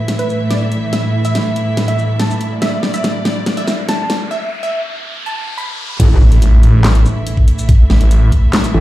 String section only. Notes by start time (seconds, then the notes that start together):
Already playing: A2 E3 A3 E4 E5
2.62 D5
6.00 A2 E3 A3 E4 E5